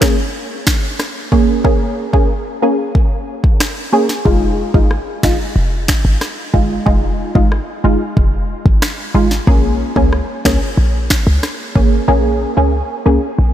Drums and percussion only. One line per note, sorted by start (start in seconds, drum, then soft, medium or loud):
0.02 finger snap medium
0.02 kick medium
0.02 snare loud
0.67 finger snap medium
0.67 kick medium
0.67 snare loud
1.00 cross-stick medium
1.00 snare medium
1.32 kick medium
1.65 kick loud
2.13 kick medium
2.95 kick medium
3.44 kick medium
3.60 finger snap medium
3.60 cross-stick medium
3.60 snare loud
4.09 snare medium
4.26 kick loud
4.74 kick medium
4.91 cross-stick medium
5.23 finger snap medium
5.23 kick medium
5.23 snare loud
5.88 finger snap medium
5.88 kick medium
5.88 snare loud
6.21 cross-stick medium
6.21 snare medium
6.54 kick medium
6.87 kick loud
7.35 kick medium
7.52 cross-stick medium
8.17 kick loud
8.66 kick medium
8.82 finger snap medium
8.82 cross-stick medium
8.82 snare loud
9.31 snare medium
9.47 kick loud
9.96 kick medium
10.13 cross-stick medium
10.45 finger snap medium
10.45 kick medium
10.45 snare loud
11.10 finger snap medium
11.10 kick medium
11.10 snare loud
11.43 cross-stick medium
11.43 snare medium
11.76 kick medium